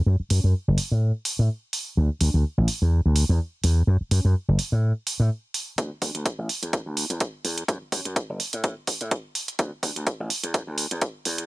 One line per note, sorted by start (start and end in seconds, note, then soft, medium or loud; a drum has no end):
0.06 0.17 F#2 medium
0.20 muted slap bass stroke soft
0.30 0.41 F#2 medium
0.30 open hi-hat loud
0.44 0.53 F#2 medium
0.68 0.76 F#1 medium
0.78 muted slap bass stroke soft
0.78 open hi-hat loud
0.92 1.11 A2 medium
1.25 open hi-hat loud
1.39 1.48 A2 medium
1.73 open hi-hat loud
1.97 2.08 D2 medium
2.21 2.32 D2 medium
2.21 open hi-hat loud
2.34 2.43 D2 medium
2.58 2.67 A1 medium
2.68 muted slap bass stroke soft
2.68 open hi-hat loud
2.82 3.01 E2 medium
3.06 3.25 D2 medium
3.16 open hi-hat loud
3.29 3.38 E2 medium
3.64 3.84 E2 medium
3.64 open hi-hat loud
3.87 3.98 F#2 medium
4.01 muted slap bass stroke soft
4.11 4.22 F#2 medium
4.11 open hi-hat medium
4.25 4.33 F#2 medium
4.48 4.57 F#1 medium
4.59 muted slap bass stroke soft
4.59 open hi-hat medium
4.72 4.92 A2 medium
5.07 open hi-hat loud
5.20 5.29 A2 medium
5.54 open hi-hat loud
5.78 5.89 D2 medium
5.78 kick loud
5.78 closed hi-hat medium
6.02 6.13 D2 medium
6.02 kick medium
6.02 open hi-hat loud
6.15 6.24 D2 medium
6.15 closed hi-hat medium
6.26 kick loud
6.26 closed hi-hat medium
6.39 6.47 A1 medium
6.49 muted slap bass stroke soft
6.49 open hi-hat medium
6.62 6.82 E2 medium
6.62 closed hi-hat medium
6.73 kick loud
6.73 closed hi-hat medium
6.86 7.06 D2 medium
6.97 open hi-hat loud
7.10 7.19 E2 medium
7.10 closed hi-hat medium
7.20 kick loud
7.20 closed hi-hat medium
7.45 7.65 E2 medium
7.45 open hi-hat loud
7.58 closed hi-hat soft
7.68 7.79 F#2 medium
7.68 kick loud
7.68 closed hi-hat medium
7.82 muted slap bass stroke soft
7.92 8.03 F#2 medium
7.92 kick medium
7.92 open hi-hat loud
8.05 8.14 F#2 medium
8.05 closed hi-hat medium
8.16 kick loud
8.16 closed hi-hat medium
8.30 8.38 F#1 medium
8.40 muted slap bass stroke soft
8.40 open hi-hat loud
8.53 8.73 A2 medium
8.53 closed hi-hat medium
8.64 kick loud
8.64 closed hi-hat medium
8.87 kick medium
8.87 open hi-hat loud
9.01 9.10 A2 medium
9.01 closed hi-hat soft
9.11 kick loud
9.11 closed hi-hat medium
9.35 open hi-hat loud
9.48 closed hi-hat medium
9.59 9.70 D2 medium
9.59 kick loud
9.59 closed hi-hat medium
9.83 9.94 D2 medium
9.83 kick medium
9.83 open hi-hat loud
9.96 10.05 D2 medium
9.96 closed hi-hat soft
10.07 kick loud
10.07 closed hi-hat medium
10.20 10.29 A1 medium
10.30 muted slap bass stroke soft
10.30 open hi-hat loud
10.43 10.63 E2 medium
10.43 closed hi-hat soft
10.54 kick loud
10.54 closed hi-hat medium
10.67 10.87 D2 medium
10.78 open hi-hat loud
10.91 11.00 E2 loud
10.91 closed hi-hat medium
11.02 kick loud
11.02 closed hi-hat medium
11.25 11.46 E2 medium
11.25 open hi-hat loud
11.38 closed hi-hat soft